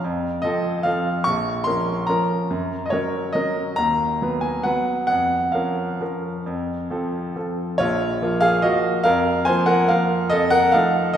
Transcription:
grand piano
0.04 F2
0.42 F3 C4 A4 D#5
0.83 F3 C4 A4 F5
1.24 A#1 C#6
1.64 F3 C#4 A#4 C6
2.07 F3 C#4 A#4 A#5
2.50 F#2
2.86 D#5
2.90 F#3 C#4 A#4 C#5
3.33 F#3 C#4 A#4 D#5
3.76 D#2 A#5
4.22 F#3 B3 B4
4.41 G#5
4.63 F#3 B3 B4 F#5
5.07 F2 F#5
5.52 F3 C#4 A#4 F5
6.01 F3 C#4 A#4
6.46 F2
6.90 F3 C4 A4
7.36 F3 C4 A4
7.78 A#1 F4 C#5
8.22 F3 A#3 F4
8.41 G#4 F5
8.62 F3 A#3 F4 F#4 D#5
9.04 F2 A#4 F5
9.45 F3 A#3 F4 C5 G#5
9.66 A#4 F#5
9.88 F3 A#3 F4 A#4 F5
10.30 F2 A4 D#5
10.50 A#4 F#5
10.72 F3 A3 D#4 A4 F5
11.13 D#5

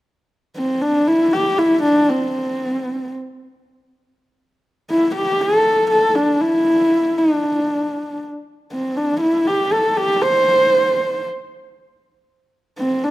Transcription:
horsehead fiddle
0.56 C4
0.82 D4
1.07 E4
1.33 G4
1.58 E4
1.83 D4
2.09 C4
4.90 E4
5.15 G4
5.41 A4
5.91 A4
6.15 D4
6.41 E4
7.17 D4
8.72 C4
8.97 D4
9.21 E4
9.47 G4
9.72 A4
9.97 G4
10.22 C5
12.78 C4
13.04 D4

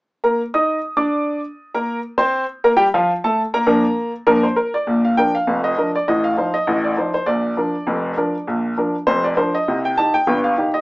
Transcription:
upright piano
0.24 A#3 A#4 A#5
0.54 D#4 D#5 D#6
0.97 D4 D5 D6
1.74 A#3 A#4 A#5
2.18 C4 C5 C6
2.64 A#3 A#4 A#5
2.77 G3 G4 G5
2.94 F3 F4 F5
3.24 A3 A4 A5
3.54 A#3 A#4 A#5
3.67 A#2 F3 D4 A#4
4.27 A#2 F3 D4 A#4
4.43 C5
4.56 A#4
4.74 D5
4.87 A#1 A#2
5.05 F5
5.17 F3 D4 A#4 G5
5.35 F5
5.47 F1 F2
5.64 D#5
5.78 F3 D4 A#4
5.95 D5
6.08 A1 A2 D#5
6.24 F5
6.37 F3 D#4 C5
6.54 D#5
6.67 A1 A2
6.84 D5
6.97 F3 D#4 C5
7.14 C5
7.26 A#1 A#2 D5
7.57 F3 D4 A#4
7.87 F1 F2
8.17 F3 D4 A#4
8.47 A#1 A#2
8.78 F3 D4 A#4
9.07 F1 F2 C5
9.24 D5
9.37 F3 D4 A#4 C5
9.55 D#5
9.68 C2 C3
9.85 G5
9.98 D#3 D#4 G4 A5
10.14 G5
10.27 G1 G2
10.44 F5
10.57 D#3 D#4 G4
10.74 D#5

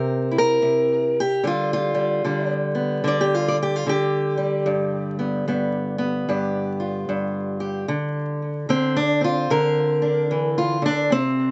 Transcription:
steel-string acoustic guitar
Already playing: C3 C4 A#4
0.31 E4
0.38 A#4
0.62 C3
1.20 G4
1.44 D3 G3 F4
1.73 F4
1.95 G3
2.24 D3 G3
2.75 B3
3.04 D3 D5
3.21 G4
3.35 F4
3.48 D5
3.63 G4
3.76 F4
3.87 D3 G4
4.37 G3
4.66 G2
5.19 B3
5.48 G2 B3
5.98 B3
6.29 G2 G4
6.80 F4
7.09 G2
7.60 G4
7.88 D3
8.69 D3 C4
8.97 D4
9.21 C4 F4
9.50 D3 A#4
10.02 D4
10.31 E3
10.58 F4
10.82 D3 D4
11.12 C3 C4

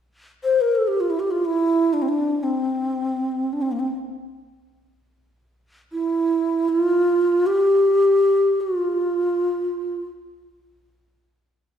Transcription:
ney
0.44 C5
0.61 A#4
0.75 A4
0.88 G4
1.00 F4
1.10 E4
1.19 G4
1.31 F4
1.45 E4
1.93 D4
2.02 C4
2.08 D4
2.43 C4
3.53 D4
3.62 C4
3.72 A#3
3.79 C4
5.92 E4
6.69 E4
6.82 F4
7.46 G4
8.61 F4

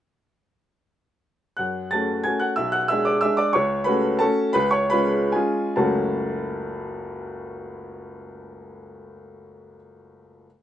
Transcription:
upright piano
1.57 F#2 F#5 F#6
1.91 A3 C#4 F#4 A5 A6
2.24 A3 C#4 F#4 G#5 G#6
2.40 F#5 F#6
2.56 B1 E5 E6
2.72 F#5 F#6
2.88 G#3 D4 G#4 E5 E6
3.05 D5 D6
3.21 G#3 D4 G#4 E5 E6
3.37 D5 D6
3.53 C#2 C#5 C#6
3.84 A3 C#4 F#4 B4 B5
4.19 A3 C#4 F#4 A4 A5
4.53 C#2 B4 B5
4.71 C#5 C#6
4.90 G#3 C#4 F4 B4 B5
5.32 G#3 C#4 F4 G#4 G#5
5.76 F#1 C#2 F#3 A3 C#4 F#4 A5

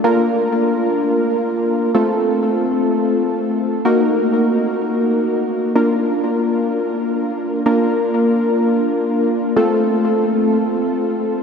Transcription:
synth keys
0.04 A#3 D4 F4 A#4
1.95 A3 C4 F4 A4
3.85 A#3 D#4 F#4 A#4
5.76 A#3 D4 F4 A#4
7.66 A#3 D4 F4 A#4
9.56 A3 C4 F4 A4

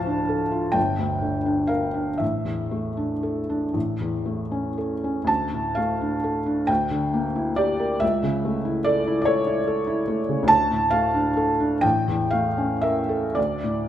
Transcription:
felt piano
Already playing: D2 A2 F3 F5 A5
0.07 D4
0.29 A4
0.51 F4
0.72 G1 G5
0.99 D2
1.22 D3
1.46 D4
1.67 A#4 F5
1.94 D4
2.18 A1 E5
2.45 E2
2.71 A3
2.97 D4
3.23 A4
3.50 D4
3.73 A1
4.00 E2
4.25 A3
4.51 C#4
4.78 A4
5.04 C#4
5.24 D2 A5
5.53 A2
5.75 A3 F5
6.01 D4
6.24 A4
6.46 D4
6.67 D2 G5
6.91 D3
7.13 A#3
7.35 E4
7.56 G4 D5
7.79 A#4
8.00 C#2 E5
8.23 C#3
8.45 A3
8.65 E4
8.84 A4 D5
9.07 E4
9.22 C#5 D5
9.27 A4
9.47 E4
9.67 A4
9.87 E4
10.08 A3
10.29 C#3
10.43 D2
10.48 A5
10.71 A2
10.90 A3 F5
11.14 D4
11.37 A4
11.60 D4
11.81 A1 G5
12.08 E2
12.31 A3 F5
12.58 C#4
12.82 A#4 E5
13.09 A4
13.35 D2 D5
13.64 A2

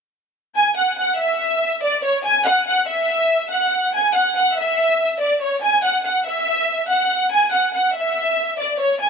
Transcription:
violin section
0.56 G#5
0.77 F#5
0.98 F#5
1.19 E5
1.83 D5
2.04 C#5
2.25 G#5
2.47 F#5
2.67 F#5
2.88 E5
3.51 F#5
3.95 G#5
4.15 F#5
4.36 F#5
4.58 E5
5.20 D5
5.42 C#5
5.63 G#5
5.84 F#5
6.04 F#5
6.26 E5
6.89 F#5
7.32 G#5
7.53 F#5
7.74 F#5
7.95 E5
8.59 D5
8.80 C#5
9.01 G#5

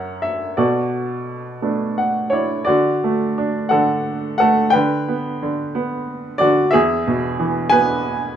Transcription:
upright piano
Already playing: F#2 A#4 C#5 F#5
0.22 E5
0.57 B2 F#4 A4 D5
1.62 A3 B3 D4
1.98 F#5
2.30 E4 C#5 D5
2.65 D3 F#4 D5
3.04 A3
3.38 D4
3.69 D3 A4 F#5
4.38 A3 A4 F#5
4.70 B4 G5
4.75 D3
5.08 B3
5.42 D3
5.75 B3
6.38 D3 F#4 D5
6.71 E2 G#4 E5
7.07 B2
7.40 E3
7.70 B3 B4 G#5

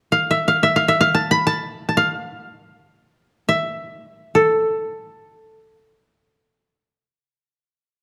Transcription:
koto
0.12 F5
0.31 E5
0.48 F5
0.63 E5
0.76 F5
0.88 E5
1.01 F5
1.15 A5
1.31 B5
1.47 A5
1.89 A5
1.97 F5
3.49 E5
4.35 A4

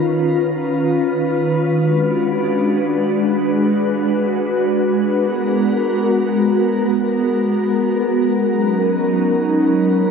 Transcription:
ambient pad
Already playing: D#3 C#4 F4 B4
1.72 G#3 D4 F#4
5.11 B3 A#4
8.49 F#3 C#4 D#4

